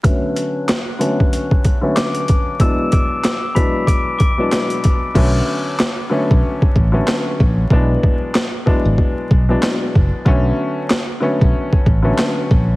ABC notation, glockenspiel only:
X:1
M:4/4
L:1/16
Q:"Swing 16ths" 1/4=94
K:Bdor
V:1 name="Glockenspiel"
f'4- f' z6 z [d'd'']2 z2 | [e'e'']2 [d'd'']4 [bb']2 [d'd'']2 [d'd'']6 | z16 | z16 |
z16 |]